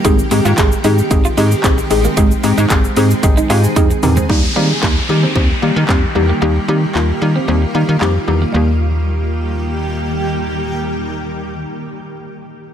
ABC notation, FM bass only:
X:1
M:4/4
L:1/16
Q:1/4=113
K:Eb
V:1 name="FM bass" clef=bass
A,,,2 A,, A,, A,,,2 A,,2 A,,,2 A,,2 B,,,2 =A,,,2 | A,,,2 A,, A,, A,,,2 A,,2 A,,,2 A,,2 F,,2 _F,,2 | E,,2 E,2 E,,2 E,2 E,,2 E, E, F,,2 _F,,2 | E,,2 E,2 E,,2 E,2 E,,2 E, E, F,,2 _F,,2 |
E,,16- | E,,16 |]